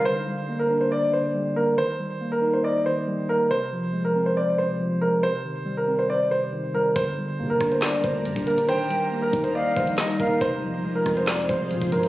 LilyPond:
<<
  \new Staff \with { instrumentName = "Flute" } { \time 4/4 \key g \phrygian \tempo 4 = 139 r1 | r1 | r1 | r1 |
r1 | g''4 r4 f''4 ees''8 f''8 | r1 | }
  \new Staff \with { instrumentName = "Grand piano" } { \time 4/4 \key g \phrygian c''4~ c''16 bes'8 c''16 d''8 c''4 bes'8 | c''4~ c''16 bes'8 c''16 d''8 c''4 bes'8 | c''4~ c''16 bes'8 c''16 d''8 c''4 bes'8 | c''4~ c''16 bes'8 c''16 d''8 c''4 bes'8 |
c''4~ c''16 bes'8 c''16 d''8 c''4 bes'8 | c''4~ c''16 bes'8 c''16 d''8 c''4 bes'8 | c''4~ c''16 bes'8 c''16 d''8 c''4 bes'8 | }
  \new Staff \with { instrumentName = "Ambient pad" } { \time 4/4 \key g \phrygian << { r1 | r1 | r1 | r1 |
<g bes'>1~ | <g bes'>1 | <aes c''>1 | } \\ { r1 | r1 | r1 | r1 |
d'1 | ees'1 | f'1 | } >> }
  \new Staff \with { instrumentName = "Tine electric piano" } { \clef bass \time 4/4 \key g \phrygian d8 g8 bes8 d'8 d''8 d8 g8 bes8 | ees8 g8 bes8 ees'8 ees''8 ees8 g8 bes8 | c8 f8 aes8 c'8 c''8 c8 f8 aes8 | c8 ees8 g8 c'8 c''8 c8 ees8 g8 |
d8 g8 bes8 d'8 d''8 d8 g8 bes8 | ees8 g8 bes8 ees'8 ees''8 ees8 g8 bes8 | c8 f8 aes8 c'8 c''8 c8 f8 aes8 | }
  \new Staff \with { instrumentName = "808-style bass" } { \clef bass \time 4/4 \key g \phrygian r1 | r1 | r1 | r1 |
g,,4 d16 g,,16 g,,8. f,,16 d,8 g,16 g,,16 ees,,8~ | ees,,8. r8. ees,8 r8 bes,,8 r8 ees,,8 | f,,8 f,16 f,,16 r8 f,4 f,,8 c16 f,,16 g,8 | }
  \new DrumStaff \with { instrumentName = "Drums" } \drummode { \time 4/4 r4 r4 r4 r4 | r4 r4 r4 r4 | r4 r4 r4 r4 | r4 r4 r4 r4 |
<hh bd>4 r8 <hh bd ss>16 hh16 <hc sn>8 bd8 hh16 bd16 hh16 hh16 | hh8 hh8 r8 <hh bd>16 hh16 r8 bd16 hh16 <hc sn>8 <hh bd>8 | <hh bd>4 r8 <hh bd ss>16 hh16 <hc sn>8 bd8 hh16 bd16 hh16 hh16 | }
>>